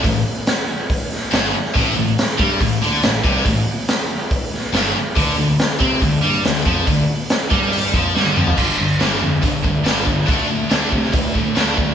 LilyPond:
<<
  \new Staff \with { instrumentName = "Distorted electric guitar" } { \clef bass \time 4/4 \key d \dorian \tempo 4 = 141 a,8 r2 r8 g,8 r8 | a,8 a,8 r8 g8 a,8 d8 a,8 c8 | a,8 r2 r8 g,8 r8 | d8 d8 r8 c'8 d8 g8 d8 f8 |
d8 r4 g4 f8 g8 f8 | <g, d g>8 <g, d>8 <g, d g>8 <g, d>8 <g, d>8 <g, d>8 <g, d g>8 <g, d>8 | <d a d'>8 <d a>8 <d a d'>8 <d a>8 <d a>8 <d a>8 <d a d'>8 <d a>8 | }
  \new Staff \with { instrumentName = "Picked electric bass" } { \clef bass \time 4/4 \key d \dorian a,,8 r2 r8 g,,8 r8 | a,,8 a,,8 r8 g,8 a,,8 d,8 a,,8 c,8 | a,,8 r2 r8 g,,8 r8 | d,8 d,8 r8 c8 d,8 g,8 d,8 f,8 |
d,8 r4 g,4 f,8 g,8 f,8 | g,,8 g,,8 g,,8 f,8 g,,8 d,8 g,,4 | d,8 d,8 d,8 c8 d,8 a,8 d,4 | }
  \new DrumStaff \with { instrumentName = "Drums" } \drummode { \time 4/4 <hho bd>4 <hho sn>4 <hho bd>8 sn8 <hho sn>8. sn16 | <hho bd>4 <hho sn>8 bd8 <hho bd>4 <hho sn>8 bd16 sn16 | <hho bd>4 <hho sn>4 <hho bd>8 sn8 <hho sn>4 | <hho bd>4 <hho sn>8 bd8 <hho bd>4 <hho sn>8 bd8 |
<hho bd>4 <hho sn>8 bd8 hho8 bd8 sn16 tommh16 toml16 tomfh16 | <cymc bd>4 <hho sn>4 <hho bd>8 bd8 <hho sn>8 bd8 | <hho bd>4 <hho sn>8 bd16 sn16 <hho bd>8 bd8 <hho sn>8 bd8 | }
>>